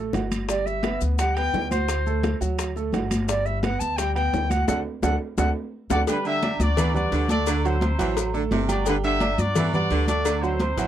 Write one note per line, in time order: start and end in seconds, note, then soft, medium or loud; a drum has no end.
0.00 0.11 A3 medium
0.00 0.11 A4 medium
0.13 0.95 G1 medium
0.13 0.43 F#4 medium
0.13 0.43 F#5 medium
0.13 high bongo soft
0.13 low bongo medium
0.13 high conga medium
0.13 high timbale medium
0.13 low timbale medium
0.13 maracas soft
0.31 high conga medium
0.31 high timbale medium
0.31 maracas medium
0.48 0.78 G3 medium
0.48 0.78 G4 medium
0.48 0.67 D5 medium
0.48 high bongo medium
0.48 high conga soft
0.48 high timbale medium
0.48 maracas medium
0.66 1.01 E5 medium
0.66 high bongo soft
0.66 high conga soft
0.66 maracas soft
0.83 1.13 B3 medium
0.83 1.13 B4 medium
0.83 high bongo medium
0.83 high conga medium
0.83 high timbale medium
0.83 low timbale medium
0.83 maracas soft
1.01 1.50 D2 medium
1.01 high bongo soft
1.01 high conga soft
1.01 maracas medium
1.18 1.34 G3 medium
1.18 1.34 G4 medium
1.18 1.36 F#5 loud
1.18 high bongo medium
1.18 high conga soft
1.18 high timbale medium
1.18 maracas medium
1.35 1.65 B3 medium
1.35 1.65 B4 medium
1.35 1.70 G5 loud
1.35 high bongo soft
1.35 high conga soft
1.35 high timbale medium
1.35 maracas soft
1.53 2.35 D2 medium
1.53 high bongo soft
1.53 low bongo medium
1.53 high conga soft
1.53 low timbale medium
1.53 maracas soft
1.71 2.00 F#4 medium
1.71 2.37 C5 loud
1.71 2.00 F#5 medium
1.71 high conga medium
1.71 high timbale medium
1.71 maracas medium
1.88 high bongo medium
1.88 high conga soft
1.88 high timbale medium
1.88 maracas medium
2.06 2.35 A3 medium
2.06 2.35 A4 medium
2.06 high bongo soft
2.06 high conga soft
2.06 maracas soft
2.23 high bongo medium
2.23 high conga medium
2.23 high timbale medium
2.23 low timbale medium
2.23 maracas soft
2.41 2.90 D2 medium
2.41 2.69 F#3 medium
2.41 2.70 F#4 medium
2.41 high bongo soft
2.41 high conga soft
2.41 maracas medium
2.58 high bongo medium
2.58 high conga soft
2.58 high timbale medium
2.58 maracas loud
2.76 2.90 A3 medium
2.76 2.91 A4 medium
2.76 high bongo soft
2.76 high conga soft
2.76 maracas soft
2.93 3.75 G1 loud
2.93 3.22 F#4 medium
2.93 3.22 F#5 medium
2.93 high bongo soft
2.93 low bongo medium
2.93 high conga medium
2.93 high timbale medium
2.93 low timbale medium
2.93 maracas soft
3.11 high conga medium
3.11 high timbale loud
3.11 maracas medium
3.28 3.57 G3 medium
3.28 3.57 G4 medium
3.28 3.47 D5 medium
3.28 high bongo medium
3.28 high timbale medium
3.28 maracas medium
3.46 3.62 E5 medium
3.46 high bongo soft
3.46 high conga soft
3.46 maracas soft
3.63 3.92 B3 medium
3.63 3.92 B4 medium
3.63 3.81 F#5 loud
3.63 high bongo medium
3.63 high conga medium
3.63 high timbale medium
3.63 low timbale medium
3.63 maracas soft
3.80 4.30 D2 medium
3.80 3.98 A5 loud
3.80 high bongo soft
3.80 high conga soft
3.80 maracas medium
3.97 4.12 G3 medium
3.97 4.13 G4 medium
3.97 4.14 G5 loud
3.97 high bongo medium
3.97 high conga soft
3.97 high timbale medium
3.97 maracas medium
4.15 4.44 B3 medium
4.15 4.44 B4 medium
4.15 4.51 G5 loud
4.15 high bongo soft
4.15 high conga soft
4.15 high timbale medium
4.15 maracas soft
4.33 4.65 D2 medium
4.33 high bongo soft
4.33 low bongo medium
4.33 high conga soft
4.33 low timbale medium
4.33 maracas soft
4.50 4.65 F#4 medium
4.50 4.67 F#5 loud
4.50 4.65 F#5 medium
4.50 high conga medium
4.50 high timbale medium
4.50 maracas medium
4.68 4.81 D2 medium
4.68 4.79 D4 loud
4.68 4.79 F#4 loud
4.68 4.79 A4 loud
4.68 4.79 F#5 medium
4.68 high bongo loud
4.68 high conga medium
4.68 high timbale loud
4.68 maracas loud
5.03 5.16 D2 loud
5.03 5.14 D4 loud
5.03 5.14 F#4 medium
5.03 5.14 A4 medium
5.03 5.14 F#5 medium
5.03 high bongo loud
5.03 high conga loud
5.03 high timbale loud
5.03 maracas loud
5.38 5.51 D2 loud
5.38 5.49 D4 medium
5.38 5.49 F#4 medium
5.38 5.49 A4 medium
5.38 5.49 F#5 loud
5.38 high bongo loud
5.38 high conga loud
5.38 high timbale medium
5.38 maracas loud
5.90 6.03 D2 loud
5.90 6.02 D4 medium
5.90 6.02 F#4 loud
5.90 5.99 F#4 medium
5.90 6.02 A4 medium
5.90 5.99 D5 loud
5.90 6.02 F#5 loud
5.90 high bongo loud
5.90 high conga loud
5.90 high timbale loud
5.90 maracas loud
6.07 6.17 D3 medium
6.07 6.37 G3 medium
6.07 6.25 D4 medium
6.07 6.36 G4 medium
6.07 6.24 B4 loud
6.07 6.37 G5 medium
6.07 cowbell loud
6.07 high conga soft
6.07 maracas medium
6.25 6.54 D3 medium
6.25 6.59 G4 loud
6.25 6.58 E5 loud
6.25 high conga soft
6.25 low agogo medium
6.25 maracas soft
6.42 6.71 D4 medium
6.42 6.71 D5 medium
6.42 6.71 D6 medium
6.42 cowbell medium
6.42 high conga medium
6.42 low agogo loud
6.42 maracas soft
6.59 7.08 D2 medium
6.59 6.94 F#4 medium
6.59 6.94 D5 loud
6.59 high conga loud
6.59 maracas medium
6.76 6.95 E3 medium
6.76 6.92 B3 medium
6.76 6.92 B4 medium
6.76 6.92 B5 medium
6.76 cowbell loud
6.76 high conga soft
6.76 low conga medium
6.76 low agogo loud
6.76 maracas loud
6.94 7.23 G3 medium
6.94 7.27 F#4 medium
6.94 7.24 B4 medium
6.94 7.27 D5 loud
6.94 7.24 F#5 medium
6.94 high conga soft
6.94 low conga medium
6.94 maracas soft
7.12 7.93 D2 loud
7.12 7.30 D3 medium
7.12 cowbell medium
7.12 high conga soft
7.12 low agogo medium
7.12 maracas soft
7.29 7.58 A3 medium
7.29 7.63 F#4 medium
7.29 7.58 A4 medium
7.29 7.62 D5 loud
7.29 7.58 A5 medium
7.29 cowbell medium
7.29 high conga medium
7.29 low agogo medium
7.29 maracas medium
7.46 7.75 D3 medium
7.46 cowbell loud
7.46 high conga soft
7.46 low agogo loud
7.46 maracas loud
7.64 7.79 F#3 medium
7.64 8.34 E4 medium
7.64 7.79 F#4 medium
7.64 8.34 C5 medium
7.64 7.79 F#5 loud
7.64 high conga soft
7.64 maracas soft
7.81 7.96 C4 medium
7.81 7.96 C5 medium
7.81 7.96 C6 medium
7.81 cowbell medium
7.81 high conga loud
7.81 low agogo medium
7.81 maracas soft
7.98 8.48 A1 medium
7.98 8.17 E3 medium
7.98 8.27 F#3 loud
7.98 8.27 F#4 loud
7.98 8.28 F#5 loud
7.98 cowbell medium
7.98 high conga soft
7.98 low agogo medium
7.98 maracas medium
8.16 cowbell loud
8.16 high conga soft
8.16 low agogo loud
8.16 maracas loud
8.33 8.43 D3 medium
8.33 8.63 A3 medium
8.33 8.63 A4 medium
8.33 8.63 A5 medium
8.33 high conga soft
8.33 maracas soft
8.51 9.33 G1 loud
8.51 8.70 C3 medium
8.51 cowbell medium
8.51 high conga medium
8.51 low timbale medium
8.51 low agogo medium
8.51 maracas soft
8.68 8.83 G3 medium
8.68 8.86 F#4 medium
8.68 8.83 G4 medium
8.68 8.86 D5 loud
8.68 8.83 G5 medium
8.68 cowbell medium
8.68 high conga medium
8.68 low agogo loud
8.68 maracas medium
8.85 8.95 D3 loud
8.85 9.14 G3 medium
8.85 8.95 D4 medium
8.85 9.14 G4 medium
8.85 8.95 B4 loud
8.85 9.14 G5 medium
8.85 cowbell loud
8.85 high conga soft
8.85 maracas loud
9.03 9.33 D3 medium
9.03 9.36 G4 medium
9.03 9.37 E5 loud
9.03 high conga soft
9.03 low agogo medium
9.03 maracas soft
9.20 9.50 D4 medium
9.20 9.50 D5 medium
9.20 9.50 D6 medium
9.20 cowbell medium
9.20 high conga medium
9.20 low agogo loud
9.20 maracas soft
9.38 9.87 G2 loud
9.38 9.72 F#4 medium
9.38 9.73 D5 loud
9.38 high conga medium
9.38 maracas medium
9.55 9.75 E3 medium
9.55 9.70 B3 medium
9.55 9.70 B4 medium
9.55 9.71 B5 medium
9.55 cowbell loud
9.55 high conga soft
9.55 low conga medium
9.55 low agogo loud
9.55 maracas medium
9.73 10.02 G3 medium
9.73 10.06 F#4 medium
9.73 10.02 B4 medium
9.73 10.06 D5 loud
9.73 10.03 F#5 medium
9.73 high conga soft
9.73 low conga medium
9.73 maracas soft
9.90 10.72 D2 medium
9.90 10.09 D3 medium
9.90 cowbell medium
9.90 high conga soft
9.90 low agogo medium
9.90 maracas soft
10.08 10.37 A3 medium
10.08 10.41 F#4 medium
10.08 10.37 A4 medium
10.08 10.40 D5 loud
10.08 10.37 A5 medium
10.08 cowbell medium
10.08 high conga medium
10.08 low agogo medium
10.08 maracas medium
10.25 10.54 D3 medium
10.25 cowbell loud
10.25 high conga soft
10.25 low agogo loud
10.25 maracas loud
10.43 10.57 F#3 loud
10.43 10.87 E4 medium
10.43 10.58 F#4 medium
10.43 10.87 C5 medium
10.43 10.57 F#5 medium
10.43 high conga soft
10.43 maracas soft
10.60 10.75 C4 medium
10.60 10.76 C5 medium
10.60 10.76 C6 medium
10.60 cowbell medium
10.60 high conga medium
10.60 low agogo medium
10.60 maracas soft
10.77 10.87 A1 medium
10.77 10.87 E3 medium
10.77 10.87 F#3 loud
10.77 10.87 F#4 medium
10.77 10.87 F#5 loud
10.77 cowbell medium
10.77 high conga soft
10.77 low agogo medium
10.77 maracas medium